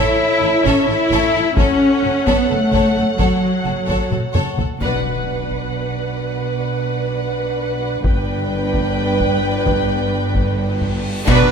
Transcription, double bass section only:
0, 0, Header, 1, 2, 480
1, 0, Start_track
1, 0, Key_signature, 2, "minor"
1, 0, Tempo, 461894
1, 1640, Time_signature, 7, 3, 24, 8
1, 11967, End_track
2, 0, Start_track
2, 0, Title_t, "Double bass section"
2, 0, Program_c, 0, 48
2, 439, Note_on_c, 0, 33, 52
2, 522, Note_off_c, 0, 33, 0
2, 677, Note_on_c, 0, 33, 71
2, 760, Note_off_c, 0, 33, 0
2, 921, Note_on_c, 0, 33, 45
2, 1004, Note_off_c, 0, 33, 0
2, 1155, Note_on_c, 0, 33, 71
2, 1238, Note_off_c, 0, 33, 0
2, 1390, Note_on_c, 0, 33, 48
2, 1473, Note_off_c, 0, 33, 0
2, 1631, Note_on_c, 0, 30, 64
2, 1714, Note_off_c, 0, 30, 0
2, 2126, Note_on_c, 0, 30, 43
2, 2209, Note_off_c, 0, 30, 0
2, 2368, Note_on_c, 0, 30, 60
2, 2451, Note_off_c, 0, 30, 0
2, 2603, Note_on_c, 0, 30, 42
2, 2686, Note_off_c, 0, 30, 0
2, 2838, Note_on_c, 0, 30, 59
2, 2921, Note_off_c, 0, 30, 0
2, 3078, Note_on_c, 0, 30, 38
2, 3161, Note_off_c, 0, 30, 0
2, 3320, Note_on_c, 0, 30, 57
2, 3403, Note_off_c, 0, 30, 0
2, 3791, Note_on_c, 0, 30, 41
2, 3874, Note_off_c, 0, 30, 0
2, 4034, Note_on_c, 0, 30, 53
2, 4118, Note_off_c, 0, 30, 0
2, 4275, Note_on_c, 0, 30, 40
2, 4358, Note_off_c, 0, 30, 0
2, 4518, Note_on_c, 0, 30, 55
2, 4601, Note_off_c, 0, 30, 0
2, 4763, Note_on_c, 0, 30, 36
2, 4846, Note_off_c, 0, 30, 0
2, 4995, Note_on_c, 0, 35, 55
2, 8320, Note_off_c, 0, 35, 0
2, 8362, Note_on_c, 0, 31, 62
2, 11471, Note_off_c, 0, 31, 0
2, 11721, Note_on_c, 0, 35, 96
2, 11944, Note_off_c, 0, 35, 0
2, 11967, End_track
0, 0, End_of_file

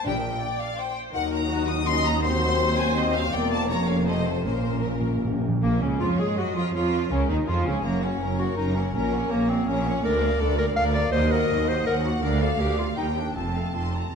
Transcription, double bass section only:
0, 0, Header, 1, 2, 480
1, 0, Start_track
1, 0, Key_signature, -5, "minor"
1, 0, Tempo, 361228
1, 80, Time_signature, 3, 2, 24, 8
1, 3919, Tempo, 380469
1, 8239, Tempo, 365854
1, 13048, Key_signature, -2, "major"
1, 15439, Tempo, 379267
1, 18336, End_track
2, 0, Start_track
2, 0, Title_t, "Double bass section"
2, 0, Program_c, 0, 48
2, 79, Note_on_c, 0, 34, 64
2, 477, Note_off_c, 0, 34, 0
2, 1508, Note_on_c, 0, 39, 76
2, 4336, Note_off_c, 0, 39, 0
2, 4393, Note_on_c, 0, 28, 72
2, 4850, Note_off_c, 0, 28, 0
2, 4856, Note_on_c, 0, 29, 75
2, 5820, Note_off_c, 0, 29, 0
2, 5821, Note_on_c, 0, 34, 64
2, 7049, Note_off_c, 0, 34, 0
2, 7292, Note_on_c, 0, 34, 77
2, 7513, Note_off_c, 0, 34, 0
2, 7537, Note_on_c, 0, 37, 80
2, 7772, Note_off_c, 0, 37, 0
2, 7773, Note_on_c, 0, 41, 71
2, 8006, Note_on_c, 0, 44, 76
2, 8008, Note_off_c, 0, 41, 0
2, 8242, Note_off_c, 0, 44, 0
2, 8243, Note_on_c, 0, 42, 64
2, 8484, Note_off_c, 0, 42, 0
2, 8490, Note_on_c, 0, 41, 71
2, 8710, Note_off_c, 0, 41, 0
2, 8725, Note_on_c, 0, 41, 75
2, 9195, Note_off_c, 0, 41, 0
2, 9202, Note_on_c, 0, 37, 72
2, 9439, Note_off_c, 0, 37, 0
2, 9443, Note_on_c, 0, 39, 73
2, 9540, Note_off_c, 0, 39, 0
2, 9687, Note_on_c, 0, 41, 73
2, 9924, Note_off_c, 0, 41, 0
2, 9925, Note_on_c, 0, 37, 74
2, 10169, Note_off_c, 0, 37, 0
2, 10169, Note_on_c, 0, 30, 69
2, 10598, Note_off_c, 0, 30, 0
2, 10650, Note_on_c, 0, 30, 68
2, 11076, Note_off_c, 0, 30, 0
2, 11130, Note_on_c, 0, 30, 71
2, 11553, Note_off_c, 0, 30, 0
2, 11608, Note_on_c, 0, 34, 77
2, 12035, Note_off_c, 0, 34, 0
2, 12091, Note_on_c, 0, 34, 80
2, 12516, Note_off_c, 0, 34, 0
2, 12577, Note_on_c, 0, 34, 80
2, 12994, Note_off_c, 0, 34, 0
2, 13047, Note_on_c, 0, 38, 84
2, 13461, Note_off_c, 0, 38, 0
2, 13517, Note_on_c, 0, 38, 82
2, 13939, Note_off_c, 0, 38, 0
2, 13991, Note_on_c, 0, 38, 83
2, 14419, Note_off_c, 0, 38, 0
2, 14472, Note_on_c, 0, 39, 85
2, 14903, Note_off_c, 0, 39, 0
2, 14963, Note_on_c, 0, 39, 78
2, 15386, Note_off_c, 0, 39, 0
2, 15440, Note_on_c, 0, 39, 83
2, 15855, Note_off_c, 0, 39, 0
2, 15905, Note_on_c, 0, 38, 86
2, 16323, Note_off_c, 0, 38, 0
2, 16379, Note_on_c, 0, 38, 74
2, 16798, Note_off_c, 0, 38, 0
2, 16854, Note_on_c, 0, 39, 65
2, 17284, Note_off_c, 0, 39, 0
2, 17343, Note_on_c, 0, 29, 62
2, 17777, Note_off_c, 0, 29, 0
2, 17835, Note_on_c, 0, 29, 53
2, 18265, Note_off_c, 0, 29, 0
2, 18336, End_track
0, 0, End_of_file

